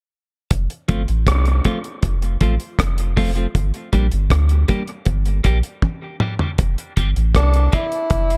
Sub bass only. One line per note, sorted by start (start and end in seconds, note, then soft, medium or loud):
0.51 0.68 F1 loud
0.90 1.06 G1 medium
1.09 1.25 A1 medium
1.27 1.61 C2 loud
2.03 2.37 F1 loud
2.41 2.58 A1 medium
2.79 3.47 F1 loud
3.55 3.72 G1 loud
3.93 4.10 A#1 medium
4.13 4.29 G1 medium
4.31 4.65 D2 medium
5.07 5.41 G1 loud
5.45 5.62 A#1 loud
6.59 6.76 F1 medium
6.98 7.14 G1 medium
7.16 7.33 A1 medium
7.35 7.69 C2 loud
8.11 8.37 F1 loud